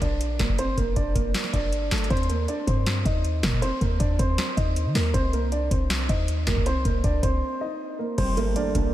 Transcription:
0.02 0.38 A#1 loud
0.02 0.38 D4 medium
0.02 0.37 D5 medium
0.02 kick loud
0.02 closed hi-hat medium
0.21 closed hi-hat medium
0.39 0.76 G1 loud
0.39 0.56 A#3 medium
0.39 0.55 A#4 medium
0.39 kick loud
0.39 snare loud
0.39 closed hi-hat medium
0.49 kick loud
0.59 0.75 C4 medium
0.59 0.75 C5 loud
0.59 closed hi-hat medium
0.77 0.96 G1 loud
0.77 0.94 A#3 medium
0.77 0.93 A#4 medium
0.77 kick medium
0.77 closed hi-hat medium
0.96 1.15 G1 loud
0.96 1.13 D4 medium
0.96 1.12 D5 medium
0.96 kick loud
0.96 closed hi-hat medium
1.15 1.34 G1 loud
1.15 1.51 A#3 medium
1.15 1.51 A#4 medium
1.15 kick loud
1.15 closed hi-hat medium
1.34 snare loud
1.34 closed hi-hat medium
1.44 snare medium
1.53 1.90 G1 loud
1.53 1.90 D4 medium
1.53 1.89 D5 medium
1.53 kick medium
1.53 closed hi-hat medium
1.72 closed hi-hat medium
1.91 2.10 G1 loud
1.91 2.08 A3 medium
1.91 2.07 A4 medium
1.91 snare loud
1.91 closed hi-hat medium
1.91 open hi-hat medium
1.98 closed hi-hat medium
2.04 closed hi-hat medium
2.10 2.47 D#2 loud
2.10 2.27 C4 medium
2.10 2.26 C5 loud
2.10 kick loud
2.10 closed hi-hat medium
2.17 closed hi-hat soft
2.23 closed hi-hat soft
2.29 2.46 A#3 medium
2.29 2.45 A#4 medium
2.29 closed hi-hat medium
2.48 2.65 D4 medium
2.48 2.64 D5 medium
2.48 closed hi-hat medium
2.67 3.04 G2 loud
2.67 3.04 C4 medium
2.67 3.03 C5 medium
2.67 kick loud
2.67 closed hi-hat medium
2.86 snare loud
2.86 closed hi-hat medium
3.05 3.42 D#2 loud
3.05 3.42 D#4 medium
3.05 3.41 D#5 medium
3.05 kick medium
3.05 closed hi-hat medium
3.25 closed hi-hat medium
3.43 3.62 A#2 loud
3.43 3.60 A#3 medium
3.43 3.59 A#4 medium
3.43 kick loud
3.43 snare loud
3.43 closed hi-hat medium
3.53 kick loud
3.62 3.78 C4 medium
3.62 3.78 C5 loud
3.62 closed hi-hat medium
3.81 4.00 D#2 loud
3.81 3.98 A#3 medium
3.81 3.97 A#4 medium
3.81 kick medium
3.81 closed hi-hat medium
4.00 4.18 D#2 loud
4.00 4.16 D4 medium
4.00 4.16 D5 medium
4.00 kick loud
4.00 closed hi-hat medium
4.19 4.37 D#2 loud
4.19 4.55 C4 medium
4.19 4.55 C5 medium
4.19 kick loud
4.19 closed hi-hat medium
4.38 snare loud
4.38 closed hi-hat medium
4.57 4.87 D#2 loud
4.57 4.93 D#4 medium
4.57 4.93 D#5 medium
4.57 kick medium
4.57 closed hi-hat medium
4.76 closed hi-hat medium
4.86 4.95 D#3 loud
4.95 5.13 D#2 loud
4.95 5.12 A#3 medium
4.95 5.11 A#4 medium
4.95 snare loud
4.95 open hi-hat medium
5.14 5.69 C2 loud
5.14 5.30 C4 medium
5.14 5.30 C5 loud
5.14 kick loud
5.14 closed hi-hat medium
5.33 5.49 A#3 medium
5.33 5.49 A#4 medium
5.33 closed hi-hat medium
5.52 5.68 D4 medium
5.52 5.68 D5 medium
5.52 closed hi-hat medium
5.71 6.08 C2 loud
5.71 6.07 C4 medium
5.71 6.07 C5 medium
5.71 kick loud
5.71 closed hi-hat medium
5.90 snare loud
5.90 closed hi-hat medium
6.09 6.46 D#2 loud
6.09 6.45 D#4 medium
6.09 6.45 D#5 medium
6.09 kick medium
6.09 closed hi-hat medium
6.28 closed hi-hat medium
6.47 6.56 C2 loud
6.47 6.63 A#3 medium
6.47 6.63 A#4 medium
6.47 kick loud
6.47 snare loud
6.47 closed hi-hat medium
6.57 6.84 C2 loud
6.57 kick loud
6.66 6.83 C4 medium
6.66 6.82 C5 loud
6.66 closed hi-hat medium
6.85 7.03 C2 loud
6.85 7.01 A#3 medium
6.85 7.01 A#4 medium
6.85 kick medium
6.85 closed hi-hat medium
7.04 7.22 C2 loud
7.04 7.20 D4 medium
7.04 7.20 D5 medium
7.04 kick loud
7.04 closed hi-hat medium
7.23 7.41 C2 loud
7.23 7.59 C4 medium
7.23 7.59 C5 medium
7.23 kick loud
7.23 closed hi-hat medium
7.61 7.97 D#4 medium
7.61 7.97 D#5 medium
7.99 8.15 A#3 medium
7.99 8.15 A#4 medium
8.18 8.54 G1 loud
8.18 8.94 G3 medium
8.18 8.34 C4 medium
8.18 8.34 C5 loud
8.18 kick loud
8.18 closed hi-hat medium
8.18 crash loud
8.18 impact medium
8.37 8.94 A3 medium
8.37 8.53 A#3 medium
8.37 8.53 A#4 medium
8.37 closed hi-hat medium
8.56 8.94 A#3 medium
8.56 8.72 D4 medium
8.56 8.72 D5 medium
8.56 closed hi-hat medium
8.75 8.94 A#1 loud
8.75 8.94 A#3 medium
8.75 8.94 D4 medium
8.75 8.94 A#4 medium
8.75 kick loud
8.75 closed hi-hat medium

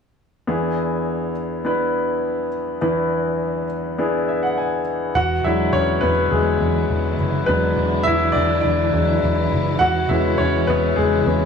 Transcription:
0.47 2.78 E2 soft
0.47 2.78 E3 soft
0.47 1.31 B3 medium
0.47 1.31 D4 soft
0.47 1.31 E4 soft
0.47 1.32 G#4 medium
1.65 2.48 B3 medium
1.65 2.48 D4 medium
1.65 2.48 E4 medium
1.65 2.49 B4 medium
2.81 5.11 E2 medium
2.81 5.11 E3 medium
2.81 3.64 B3 medium
2.81 3.65 D4 medium
2.81 3.65 E4 medium
2.81 3.65 B4 medium
3.98 4.81 B3 medium
3.98 4.81 D4 medium
3.98 4.82 E4 medium
3.98 4.82 G#4 medium
4.28 4.42 E5 soft
4.43 4.56 F#5 medium
4.58 5.12 G#5 medium
5.15 5.39 E1 loud
5.15 9.77 D3 medium
5.15 11.45 E3 medium
5.15 7.46 B3 medium
5.15 11.45 E4 medium
5.15 5.43 F#4 medium
5.15 5.45 F#5 loud
5.44 5.68 E1 medium
5.44 5.83 F#3 soft
5.44 5.84 G#3 soft
5.44 5.84 D4 soft
5.44 5.73 E4 medium
5.44 5.71 E5 medium
5.73 5.97 E1 loud
5.73 6.01 C#4 medium
5.73 6.03 C#5 medium
6.01 6.27 E1 medium
6.01 6.09 B3 medium
6.01 6.08 B4 medium
6.31 6.56 E1 medium
6.31 7.16 G#3 medium
6.31 7.15 G#4 medium
6.61 6.85 E2 medium
6.90 7.14 E1 medium
7.19 7.43 F#1 medium
7.46 7.72 E1 medium
7.46 8.31 F#3 soft
7.46 8.31 G#3 soft
7.46 8.03 B3 medium
7.46 9.78 D4 medium
7.46 8.32 D4 medium
7.46 8.01 B4 medium
7.77 8.01 E1 medium
8.03 8.30 E1 medium
8.03 8.34 E4 medium
8.03 8.35 E5 loud
8.32 8.60 E1 medium
8.32 8.60 D5 loud
8.36 8.63 D4 medium
8.61 8.89 E1 medium
8.61 8.92 D4 medium
8.61 9.46 D5 medium
8.93 9.18 E2 medium
8.93 9.19 F#3 soft
8.93 9.20 G#3 soft
8.93 9.20 D4 medium
9.23 9.47 E1 medium
9.52 9.76 F#1 medium
9.79 10.05 E1 loud
9.79 11.45 C#3 medium
9.79 10.08 F#4 medium
9.79 10.10 F#5 loud
10.09 10.34 E1 medium
10.09 10.93 G#3 soft
10.09 10.68 B3 soft
10.09 10.39 C#4 soft
10.09 10.38 E4 medium
10.09 10.37 E5 medium
10.38 10.63 E1 medium
10.38 10.67 C#4 medium
10.38 10.66 C#5 medium
10.67 10.92 E1 medium
10.67 10.96 B3 medium
10.67 10.98 B4 medium
10.96 11.21 E1 medium
10.96 11.25 G#3 medium
10.96 11.45 G#4 medium
11.26 11.45 E2 medium
11.26 11.45 G#3 soft
11.26 11.45 B3 soft
11.26 11.45 C#4 medium

